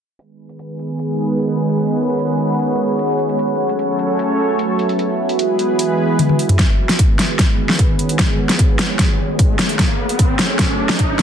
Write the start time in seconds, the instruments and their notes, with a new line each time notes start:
0.19 analog synth pad D#3 G#3 B3 G#4 B4, ambient pad G#4, closed hi-hat
0.33 ambient pad F#5
0.49 ambient pad C#5, closed hi-hat
0.59 closed hi-hat
0.75 ambient pad B5
0.79 closed hi-hat
0.99 closed hi-hat
1.39 closed hi-hat
1.59 closed hi-hat
1.69 closed hi-hat
1.79 closed hi-hat
2.09 closed hi-hat
2.19 closed hi-hat
2.39 closed hi-hat
2.59 closed hi-hat
2.99 closed hi-hat
3.19 closed hi-hat
3.29 closed hi-hat
3.39 analog synth pad F#3 A3 C#4 A4 C#5, ambient pad F#4, closed hi-hat
3.69 ambient pad B4, closed hi-hat
3.79 closed hi-hat
3.99 ambient pad E5, closed hi-hat
4.19 closed hi-hat
4.59 closed hi-hat
4.79 closed hi-hat
4.89 closed hi-hat
4.99 analog synth pad E3 G#3 B3 G#4 B4, closed hi-hat
5.29 closed hi-hat
5.39 closed hi-hat
5.59 closed hi-hat
5.71 ambient pad G#5
5.79 closed hi-hat
6.19 closed hi-hat, high tom
6.29 high tom
6.39 closed hi-hat
6.49 closed hi-hat, mid tom
6.59 analog synth pad D#3 G#3 B3 G#4 B4, ambient pad G#4, kick, snare, closed hi-hat, riser
6.71 ambient pad C#5
6.76 ambient pad B5
6.89 snare, closed hi-hat
6.99 kick, closed hi-hat
7.09 ambient pad F#5
7.19 snare, closed hi-hat
7.39 kick, snare, closed hi-hat
7.69 snare
7.79 kick, closed hi-hat
7.99 closed hi-hat
8.09 closed hi-hat
8.19 kick, snare, closed hi-hat
8.49 snare, closed hi-hat
8.59 kick, closed hi-hat
8.79 snare, closed hi-hat
8.99 kick, snare, closed hi-hat
9.39 kick, closed hi-hat
9.59 snare, closed hi-hat
9.69 closed hi-hat
9.79 analog synth pad F#3 A3 C#4 A4 C#5, ambient pad F#4, kick, snare, closed hi-hat
9.86 ambient pad E5
10.00 ambient pad B4
10.09 closed hi-hat
10.19 kick, closed hi-hat
10.39 snare, closed hi-hat
10.59 kick, snare, closed hi-hat
10.89 snare
10.99 kick, closed hi-hat